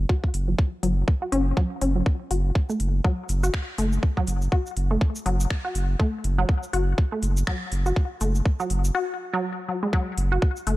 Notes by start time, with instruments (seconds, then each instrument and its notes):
0.09 synth pluck F#4, kick
0.24 kick
0.34 sub bass F#1, open hi-hat
0.48 synth pluck F#3
0.59 kick
0.83 sub bass F#1, synth pluck F#3, open hi-hat
1.08 kick
1.22 synth pluck F#4
1.32 sub bass F#1, synth pluck C#4, open hi-hat
1.57 synth pluck F#3, kick
1.81 sub bass F#1, synth pluck C#4, open hi-hat
1.96 synth pluck F#3
2.06 kick
2.31 sub bass F#1, synth pluck F#4, open hi-hat
2.55 kick
2.70 synth pluck A3, shaker
2.80 sub bass F#1, open hi-hat
3.04 synth pluck F#3, kick
3.29 sub bass F#1, open hi-hat, shaker
3.43 synth pluck F#4, shaker
3.54 finger snap, kick
3.78 sub bass F#1, synth pluck A3, open hi-hat, shaker
3.93 shaker
4.03 kick
4.17 synth pluck F#3, kick
4.27 sub bass F#1, open hi-hat, shaker
4.42 shaker
4.52 synth pluck F#4, kick
4.66 shaker
4.77 sub bass F#1, open hi-hat
4.91 synth pluck A3
5.01 kick
5.16 shaker
5.26 sub bass F#1, synth pluck F#3, open hi-hat
5.40 shaker
5.50 finger snap, kick
5.65 synth pluck F#4
5.75 sub bass F#1, open hi-hat, shaker
5.99 synth pluck A3, kick
6.24 sub bass F#1, open hi-hat
6.38 synth pluck F#3
6.49 kick
6.63 shaker
6.73 sub bass F#1, synth pluck F#4, open hi-hat
6.98 kick
7.12 synth pluck A3
7.23 sub bass F#1, open hi-hat, shaker
7.37 shaker
7.47 synth pluck F#3, finger snap, kick
7.72 sub bass F#1, open hi-hat, shaker
7.86 synth pluck F#4, shaker
7.96 kick
8.21 sub bass F#1, synth pluck A3, open hi-hat, shaker
8.35 shaker
8.45 kick
8.60 synth pluck F#3, shaker
8.70 sub bass F#1, open hi-hat
8.84 shaker
8.95 synth pluck F#4
9.34 synth pluck F#3
9.69 synth pluck F#3
9.83 synth pluck G#3
9.93 synth pluck F#3, kick
10.18 sub bass F#1, open hi-hat
10.32 synth pluck F#4
10.42 kick
10.56 shaker
10.67 sub bass F#1, synth pluck A3, open hi-hat